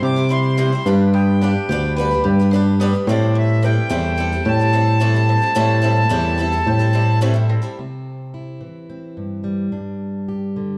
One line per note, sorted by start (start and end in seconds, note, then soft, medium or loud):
0.00 0.82 C2 medium
0.00 0.82 C3 medium
0.00 0.70 C3 medium
0.00 0.03 G3 loud
0.00 0.17 G3 soft
0.00 0.22 G3 medium
0.00 0.04 C4 medium
0.00 0.17 C4 soft
0.00 0.22 C4 medium
0.00 0.04 E4 medium
0.00 0.16 E4 soft
0.00 0.86 G4 medium
0.00 0.04 C5 medium
0.00 0.15 C5 medium
0.00 0.86 C5 medium
0.00 0.31 E5 loud
0.00 0.32 D6 loud
0.04 0.23 E4 medium
0.04 0.23 C5 medium
0.04 0.23 D5 medium
0.16 0.28 G3 soft
0.16 0.29 C4 soft
0.16 0.30 E4 medium
0.16 0.30 C5 medium
0.29 0.57 G3 medium
0.29 0.49 G3 medium
0.29 0.50 C4 medium
0.29 0.58 C4 medium
0.29 0.57 E4 medium
0.29 0.50 E4 medium
0.29 0.57 E4 medium
0.29 0.50 C5 medium
0.29 0.57 C5 medium
0.29 0.50 E5 medium
0.29 0.88 C6 loud
0.57 0.72 C3 medium
0.57 0.72 E3 medium
0.57 0.77 G3 medium
0.57 0.72 G3 medium
0.57 0.77 C4 medium
0.57 0.86 C4 medium
0.57 0.73 C4 medium
0.57 0.77 E4 medium
0.57 0.72 E4 medium
0.57 0.77 C5 medium
0.57 0.71 C5 medium
0.57 0.78 G5 loud
0.72 0.85 G3 soft
0.72 0.86 C4 soft
0.72 0.87 E4 soft
0.72 0.86 C5 medium
0.86 3.04 G1 medium
0.86 1.53 G2 loud
0.86 3.04 G2 medium
0.86 1.30 G3 medium
0.86 1.41 G3 medium
0.86 1.30 B3 medium
0.86 1.30 D4 medium
0.86 1.40 D4 medium
0.86 1.41 D4 medium
0.86 1.43 G4 medium
0.86 1.31 B4 medium
0.86 1.43 B4 medium
0.86 1.31 D5 medium
1.14 2.25 B3 medium
1.14 1.94 G5 loud
1.41 1.60 G3 loud
1.41 1.69 G3 medium
1.41 1.61 B3 loud
1.41 1.69 D4 medium
1.41 1.61 D4 medium
1.41 1.70 D4 medium
1.41 1.70 G4 medium
1.41 1.61 B4 medium
1.41 1.71 B4 medium
1.41 1.61 F5 loud
1.69 2.14 D2 loud
1.69 1.88 G3 medium
1.69 1.97 G3 medium
1.69 1.89 B3 medium
1.69 1.89 D4 medium
1.69 1.98 D4 medium
1.69 2.23 G4 medium
1.69 1.99 G4 medium
1.69 1.89 B4 medium
1.69 1.99 B4 medium
1.69 1.89 F5 medium
1.97 2.16 G3 medium
1.97 2.11 G3 medium
1.97 2.16 B3 medium
1.97 2.16 D4 medium
1.97 2.12 D4 medium
1.97 2.11 G4 medium
1.97 3.08 B4 loud
1.97 2.16 B4 medium
1.97 2.17 F5 medium
2.01 2.10 B4 medium
2.11 2.40 D4 soft
2.11 2.39 G4 medium
2.11 2.38 B4 medium
2.24 2.92 G2 medium
2.24 2.44 G3 medium
2.24 2.44 B3 medium
2.24 2.44 D4 medium
2.24 3.07 G4 medium
2.24 2.44 B4 medium
2.24 2.44 D5 loud
2.39 2.53 D4 medium
2.39 2.53 G4 medium
2.39 2.53 B4 medium
2.51 2.71 G3 loud
2.51 2.80 G3 medium
2.51 2.72 B3 medium
2.51 2.79 D4 medium
2.51 2.72 D4 medium
2.51 2.80 D4 medium
2.51 2.80 G4 medium
2.51 2.72 B4 medium
2.51 2.72 D5 loud
2.55 2.81 B4 medium
2.80 2.99 G3 loud
2.80 2.94 G3 medium
2.80 3.07 B3 medium
2.80 2.99 B3 loud
2.80 2.99 D4 loud
2.80 2.95 D4 medium
2.80 2.93 G4 medium
2.80 2.99 B4 loud
2.80 2.92 B4 medium
2.80 3.00 D5 loud
2.93 3.09 D4 soft
2.93 3.08 G4 soft
2.93 3.07 B4 medium
3.07 5.26 A1 medium
3.07 3.74 A2 medium
3.07 3.64 A2 medium
3.07 5.26 A2 medium
3.07 3.89 E3 medium
3.07 3.52 G3 medium
3.07 3.62 G3 medium
3.07 3.35 C4 medium
3.07 3.53 C4 medium
3.07 3.64 C4 medium
3.07 3.53 E4 medium
3.07 3.64 E4 medium
3.07 3.53 A4 medium
3.07 3.64 A4 medium
3.07 3.37 D5 medium
3.07 3.53 E5 medium
3.35 3.62 A3 medium
3.35 3.63 E5 loud
3.62 3.82 G3 loud
3.62 3.89 G3 medium
3.62 4.72 C4 medium
3.62 3.82 C4 medium
3.62 3.89 C4 medium
3.62 3.82 E4 loud
3.62 3.90 E4 medium
3.62 3.83 A4 medium
3.62 3.90 A4 medium
3.62 3.83 B4 loud
3.62 4.49 G5 loud
3.89 4.35 E2 loud
3.89 4.18 A2 medium
3.89 4.18 E3 medium
3.89 4.16 G3 medium
3.89 4.10 G3 medium
3.89 4.17 C4 medium
3.89 4.10 C4 medium
3.89 4.19 E4 medium
3.89 4.10 E4 medium
3.89 4.44 G4 medium
3.89 4.19 A4 medium
3.89 4.10 A4 medium
3.89 4.11 D5 medium
4.18 4.32 G3 medium
4.18 4.38 G3 medium
4.18 4.32 C4 medium
4.18 4.38 C4 medium
4.18 4.32 E4 medium
4.18 4.38 E4 medium
4.18 5.29 A4 medium
4.18 4.31 A4 medium
4.18 4.38 A4 medium
4.18 4.39 G5 medium
4.32 4.61 G3 medium
4.32 4.60 C4 soft
4.32 4.60 E4 soft
4.32 4.58 A4 medium
4.45 5.35 A2 medium
4.45 4.65 G3 medium
4.45 4.66 C4 medium
4.45 4.66 E4 medium
4.45 5.56 G4 medium
4.45 4.66 A4 medium
4.45 4.66 D5 medium
4.45 7.19 A5 loud
4.59 4.72 G3 soft
4.59 4.72 C4 soft
4.59 4.73 E4 medium
4.59 4.74 A4 medium
4.73 5.00 G3 medium
4.73 4.93 G3 medium
4.73 5.01 C4 medium
4.73 5.00 C4 medium
4.73 4.93 C4 medium
4.73 5.00 E4 medium
4.73 4.93 E4 medium
4.73 4.93 A4 medium
4.73 5.01 A4 medium
4.73 4.93 D5 medium
5.00 5.14 A2 medium
5.00 5.15 E3 medium
5.00 5.20 G3 medium
5.00 5.15 G3 medium
5.00 5.29 A3 medium
5.00 5.15 C4 medium
5.00 5.20 C4 medium
5.00 5.20 E4 loud
5.00 5.14 E4 medium
5.00 5.20 A4 medium
5.00 5.13 A4 medium
5.00 5.21 G5 loud
5.14 5.42 G3 soft
5.14 5.42 C4 medium
5.14 5.41 E4 medium
5.14 5.41 A4 medium
5.28 7.46 A1 medium
5.28 7.46 A2 medium
5.28 5.48 G3 medium
5.28 5.48 C4 medium
5.28 5.56 C4 medium
5.28 5.48 E4 medium
5.28 5.48 A4 medium
5.28 5.48 E5 loud
5.42 5.54 G3 medium
5.42 5.55 C4 medium
5.42 5.55 E4 medium
5.42 5.55 A4 medium
5.55 5.83 A2 medium
5.55 6.01 A2 medium
5.55 5.84 E3 loud
5.55 5.81 G3 loud
5.55 5.75 G3 loud
5.55 5.84 A3 medium
5.55 5.81 C4 loud
5.55 5.75 C4 loud
5.55 5.75 E4 loud
5.55 5.82 E4 loud
5.55 5.76 A4 loud
5.55 5.83 A4 loud
5.55 5.76 E5 loud
5.82 6.09 G3 medium
5.82 6.03 G3 loud
5.82 6.10 C4 medium
5.82 6.03 C4 loud
5.82 6.93 C4 medium
5.82 6.10 E4 medium
5.82 6.03 E4 loud
5.82 6.10 A4 medium
5.82 6.03 A4 loud
5.82 6.03 G5 loud
6.09 6.56 E2 medium
6.09 6.38 A2 loud
6.09 6.39 E3 loud
6.09 6.37 G3 medium
6.09 6.31 G3 medium
6.09 6.38 C4 medium
6.09 6.31 C4 medium
6.09 6.39 E4 medium
6.09 6.31 E4 medium
6.09 6.66 G4 medium
6.09 6.39 A4 medium
6.09 6.32 A4 medium
6.14 6.32 E5 loud
6.38 6.53 G3 medium
6.38 6.58 G3 medium
6.38 6.53 C4 medium
6.38 6.59 C4 medium
6.38 6.59 E4 medium
6.38 6.52 E4 medium
6.38 7.50 A4 medium
6.38 6.51 A4 medium
6.38 6.59 A4 medium
6.38 6.59 E5 medium
6.52 6.80 G3 soft
6.52 6.79 C4 medium
6.52 6.79 E4 medium
6.52 6.78 A4 medium
6.66 7.56 A2 medium
6.66 6.86 G3 medium
6.66 6.86 C4 medium
6.66 6.86 E4 medium
6.66 7.78 G4 medium
6.66 6.86 A4 medium
6.66 6.86 C5 loud
6.79 6.92 G3 medium
6.79 6.92 C4 medium
6.79 6.93 E4 medium
6.79 6.94 A4 medium
6.93 7.20 G3 medium
6.93 7.13 G3 medium
6.93 7.21 C4 medium
6.93 7.14 C4 medium
6.93 7.21 C4 medium
6.93 7.21 E4 medium
6.93 7.14 E4 medium
6.93 7.21 A4 medium
6.93 7.14 A4 medium
6.93 7.14 D5 loud
7.21 7.36 A2 medium
7.21 7.36 E3 medium
7.21 7.35 G3 medium
7.21 7.41 G3 loud
7.21 7.49 A3 medium
7.21 7.34 C4 medium
7.21 7.41 C4 loud
7.21 7.33 E4 medium
7.21 7.42 E4 loud
7.21 7.32 A4 medium
7.21 7.42 A4 loud
7.21 7.42 E5 loud
7.34 7.63 G3 soft
7.34 7.62 C4 medium
7.34 7.61 E4 medium
7.34 7.61 A4 medium
7.49 7.68 G3 medium
7.49 7.78 C4 medium
7.49 7.69 C4 medium
7.49 7.69 E4 medium
7.49 7.69 A4 medium
7.49 7.69 E5 medium
7.62 7.78 G3 soft
7.62 7.78 C4 medium
7.62 7.77 E4 medium
7.62 7.77 A4 medium
7.79 8.61 C3 medium
7.79 8.88 C4 soft
8.34 9.72 E4 soft
8.61 9.68 E3 medium
8.90 9.69 C4 soft
9.17 9.69 G2 soft
9.44 10.78 G3 soft
9.72 10.78 G2 medium
9.72 10.78 D4 soft
10.28 10.78 G4 soft
10.56 10.78 D3 soft